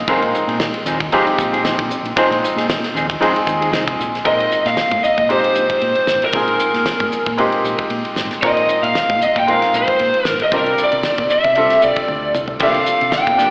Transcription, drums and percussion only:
0.08 kick loud
0.08 ride medium
0.22 ride medium
0.34 hi-hat pedal medium
0.49 ride medium
0.60 snare loud
0.60 ride medium
0.74 ride medium
0.86 hi-hat pedal medium
1.00 kick medium
1.00 ride medium
1.12 ride medium
1.27 ride medium
1.39 kick medium
1.39 hi-hat pedal medium
1.54 ride medium
1.65 snare medium
1.65 ride medium
1.79 kick medium
1.79 ride medium
1.91 hi-hat pedal medium
2.05 ride medium
2.17 kick loud
2.17 ride medium
2.32 ride medium
2.44 hi-hat pedal medium
2.58 snare soft
2.58 ride medium
2.70 snare loud
2.70 ride medium
2.84 snare soft
2.84 ride medium
2.96 hi-hat pedal medium
3.10 kick medium
3.10 ride medium
3.22 ride medium
3.36 ride medium
3.47 kick medium
3.47 hi-hat pedal medium
3.62 ride medium
3.73 snare loud
3.73 ride medium
3.88 kick medium
3.88 ride medium
4.00 hi-hat pedal medium
4.15 snare soft
4.15 ride medium
4.25 kick medium
4.25 ride medium
4.40 ride soft
4.51 hi-hat pedal medium
4.66 snare soft
4.66 ride medium
4.77 snare loud
4.77 ride medium
4.91 kick medium
4.91 ride medium
5.03 hi-hat pedal medium
5.18 kick medium
5.18 ride soft
5.30 ride medium
5.44 ride medium
5.55 hi-hat pedal medium
5.70 kick medium
5.70 ride medium
5.81 ride medium
5.95 ride medium
6.07 snare medium
6.07 hi-hat pedal medium
6.22 ride soft
6.33 kick loud
6.33 ride medium
6.48 ride soft
6.59 hi-hat pedal medium
6.74 snare soft
6.74 ride medium
6.86 snare loud
6.86 ride medium
7.00 kick medium
7.00 ride medium
7.12 hi-hat pedal medium
7.26 kick medium
7.26 ride medium
7.38 ride medium
7.52 ride medium
7.65 hi-hat pedal medium
7.78 kick medium
7.78 ride medium
7.90 ride medium
8.05 ride medium
8.16 snare medium
8.16 hi-hat pedal medium
8.31 snare soft
8.31 ride soft
8.42 kick loud
8.42 ride medium
8.57 ride medium
8.69 hi-hat pedal medium
8.84 ride medium
8.95 snare loud
8.95 ride medium
9.09 kick medium
9.09 ride medium
9.21 hi-hat pedal medium
9.36 kick medium
9.36 ride soft
9.48 ride medium
9.62 snare soft
9.62 ride medium
9.73 hi-hat pedal medium
9.87 kick medium
9.87 ride soft
9.99 ride medium
10.14 ride medium
10.25 snare medium
10.25 hi-hat pedal medium
10.40 ride medium
10.52 kick loud
10.52 ride medium
10.66 ride medium
10.78 hi-hat pedal medium
10.92 ride medium
11.03 snare medium
11.03 ride medium
11.18 kick medium
11.18 ride medium
11.30 hi-hat pedal medium
11.44 kick medium
11.44 ride medium
11.55 ride medium
11.70 snare soft
11.70 ride medium
11.82 hi-hat pedal medium
11.96 kick medium
11.96 ride medium
12.08 high tom soft
12.35 hi-hat pedal medium
12.35 mid tom medium
12.48 floor tom medium
12.60 kick loud
12.60 ride medium
12.60 crash medium
12.74 ride medium
12.86 hi-hat pedal medium
13.01 ride medium
13.12 snare loud
13.12 ride medium
13.27 kick medium
13.27 ride soft
13.39 snare soft
13.39 hi-hat pedal medium

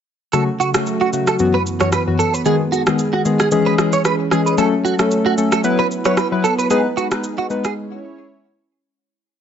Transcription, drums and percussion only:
0.33 shaker medium
0.61 shaker medium
0.74 cross-stick loud
0.74 shaker medium
0.86 shaker medium
1.13 shaker medium
1.27 cross-stick medium
1.27 shaker medium
1.39 shaker medium
1.66 shaker medium
1.80 cross-stick medium
1.80 shaker medium
1.92 cross-stick medium
1.92 shaker medium
2.20 shaker soft
2.34 shaker medium
2.45 shaker medium
2.73 shaker medium
2.87 cross-stick loud
2.87 shaker medium
2.99 shaker medium
3.25 shaker soft
3.40 cross-stick medium
3.40 shaker medium
3.51 shaker medium
3.78 cross-stick loud
3.78 shaker medium
3.93 shaker medium
4.05 cross-stick medium
4.05 shaker medium
4.31 cross-stick medium
4.31 shaker soft
4.47 shaker medium
4.58 shaker medium
4.85 shaker medium
4.99 cross-stick loud
4.99 shaker medium
5.11 shaker medium
5.38 shaker medium
5.52 cross-stick medium
5.52 shaker medium
5.64 shaker medium
5.91 shaker medium
6.05 cross-stick medium
6.05 shaker medium
6.17 cross-stick medium
6.17 shaker medium
6.45 shaker soft
6.59 shaker medium
6.70 shaker medium
6.98 shaker medium
7.11 cross-stick loud
7.11 shaker medium
7.24 shaker medium
7.50 shaker medium
7.64 cross-stick medium
7.64 shaker medium

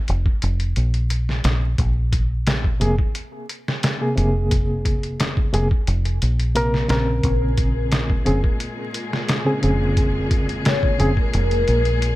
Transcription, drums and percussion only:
0.08 closed hi-hat medium
0.26 kick medium
0.42 closed hi-hat medium
0.60 closed hi-hat soft
0.76 closed hi-hat medium
0.94 closed hi-hat soft
1.10 closed hi-hat medium
1.29 snare soft
1.44 snare loud
1.44 closed hi-hat medium
1.78 kick loud
1.78 closed hi-hat medium
2.13 kick medium
2.13 closed hi-hat medium
2.47 snare loud
2.47 closed hi-hat medium
2.64 kick medium
2.81 closed hi-hat medium
2.98 kick medium
3.15 closed hi-hat medium
3.49 closed hi-hat medium
3.68 snare medium
3.83 snare loud
3.83 closed hi-hat medium
4.18 closed hi-hat medium
4.51 kick loud
4.51 closed hi-hat medium
4.85 kick medium
4.85 closed hi-hat medium
5.03 closed hi-hat soft
5.20 snare loud
5.20 closed hi-hat medium
5.37 kick medium
5.54 closed hi-hat medium
5.71 kick medium
5.87 closed hi-hat medium
6.05 closed hi-hat soft
6.22 closed hi-hat medium
6.39 closed hi-hat soft
6.56 closed hi-hat medium
6.74 snare soft
6.89 snare loud
6.89 closed hi-hat medium
7.24 kick loud
7.24 closed hi-hat medium
7.58 kick medium
7.58 closed hi-hat medium
7.92 snare loud
7.92 closed hi-hat medium
8.10 kick medium
8.26 closed hi-hat medium
8.44 kick medium
8.60 closed hi-hat medium
8.94 closed hi-hat medium
9.13 snare soft
9.29 snare loud
9.29 closed hi-hat medium
9.63 closed hi-hat medium
9.97 kick loud
9.97 closed hi-hat medium
10.31 kick medium
10.31 closed hi-hat medium
10.49 closed hi-hat soft
10.65 snare loud
10.65 closed hi-hat medium
10.83 kick medium
11.00 closed hi-hat medium
11.17 kick medium
11.34 closed hi-hat medium
11.51 closed hi-hat soft
11.68 closed hi-hat medium
11.85 closed hi-hat soft
12.02 closed hi-hat medium

